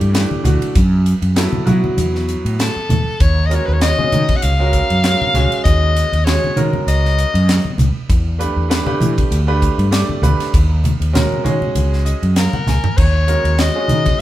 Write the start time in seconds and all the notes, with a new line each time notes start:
0.01 G2, ride
0.13 E3 A3 D4 G4, snare, hi-hat pedal, ride
0.31 muted fretless electric bass stroke, high conga
0.44 D2 E3 A3 D4 F#4, hi-hat pedal, ride, low conga
0.62 ride
0.75 F#2, kick, hi-hat pedal, ride
1.06 hi-hat pedal, ride
1.22 F#2, ride
1.36 F#3 B3 E4 A4, snare, hi-hat pedal, ride
1.53 high conga
1.66 F#3 B3 E4 F#4, hi-hat pedal, ride, low conga
1.84 high conga
1.97 E2, hi-hat pedal, ride, high conga
2.15 snare
2.29 hi-hat pedal, ride
2.45 A2, ride
2.59 A4, snare, hi-hat pedal, ride
2.76 muted fretless electric bass stroke
2.89 E2, hi-hat pedal, ride, high conga, low conga
3.07 muted fretless electric bass stroke
3.20 D#2 C#5, kick, hi-hat pedal, ride
3.46 G#3 D#5
3.50 C#4 F#4 A#4, hi-hat pedal, ride
3.55 C#5
3.65 D#2 B4
3.73 C#5
3.80 G#3 C#4 F#4 C#5 D#5, snare, hi-hat pedal, ride
3.98 G#3 C#4 F#4 G#4, high conga
4.12 D#3, hi-hat pedal, ride, low conga
4.29 kick, ride, high conga
4.36 F#5
4.42 C#2 F5, hi-hat pedal, ride
4.59 G#3 C#4 F#4 A#4
4.73 kick, hi-hat pedal, ride
4.90 F#2, ride
5.04 G#3 C#4 F#4 A#4, snare, hi-hat pedal, ride
5.21 muted fretless electric bass stroke, high conga
5.34 C#2 G#3 C#4 F#4 G#4, snare, hi-hat pedal, ride, low conga
5.52 ride
5.64 D#2 D#5, kick, hi-hat pedal, ride
5.96 hi-hat pedal, ride
6.12 D#2, ride
6.25 G#3 C#4 F#4 G#4 C#5, snare, hi-hat pedal, ride
6.44 high conga
6.56 D#3 G#3 C#4 F#4 A#4, hi-hat pedal, ride, low conga
6.73 high conga
6.87 C#2 D#5, hi-hat pedal, ride
7.05 snare
7.18 hi-hat pedal, ride
7.34 F#2, ride
7.49 snare, hi-hat pedal, ride
7.64 muted fretless electric bass stroke, high conga
7.78 C#2, hi-hat pedal, ride, low conga
8.09 E2, kick, hi-hat pedal, ride
8.38 A3 D4 G4 B4, hi-hat pedal, ride
8.56 E2
8.69 A3 D4 G4 B4, snare, hi-hat pedal, ride
8.86 A3 D4 G4 B4, high conga
9.00 E3, hi-hat pedal, ride, low conga
9.17 kick, ride, high conga
9.31 D2, hi-hat pedal, ride
9.47 A3 D4 G4 B4
9.62 kick, hi-hat pedal, ride
9.78 G2, ride
9.91 A3 D4 G4 D5, snare, hi-hat pedal, ride
10.09 muted fretless electric bass stroke, high conga
10.22 D2 A3 D4 G4 B4, hi-hat pedal, ride, low conga
10.40 snare, ride
10.54 D#2, kick, hi-hat pedal, ride
10.84 hi-hat pedal, ride, low conga
11.00 D#2, ride
11.13 G#3 C#4 F#4 A#4, snare, hi-hat pedal, ride, low conga
11.32 high conga
11.44 D#3 G#3 C#4 F#4 G#4, hi-hat pedal, ride, low conga
11.62 high conga
11.75 C#2, hi-hat pedal, ride, high conga
11.93 snare
12.05 D#5, hi-hat pedal, ride
12.22 F#2, ride
12.36 A#4 F5, snare, hi-hat pedal, ride
12.53 F#5, muted fretless electric bass stroke, high conga
12.66 C#2 G#5, snare, hi-hat pedal, low conga
12.84 floor tom
12.97 D#2 C#5, kick, crash
13.27 G#3 C#4 F#4 A#4, hi-hat pedal, ride
13.44 D#2, ride
13.57 G#3 C#4 F#4 C#5 D#5, snare, hi-hat pedal, ride
13.74 G#3 C#4 F#4 G#4
13.88 D#3, hi-hat pedal, ride, low conga
14.06 kick, ride, high conga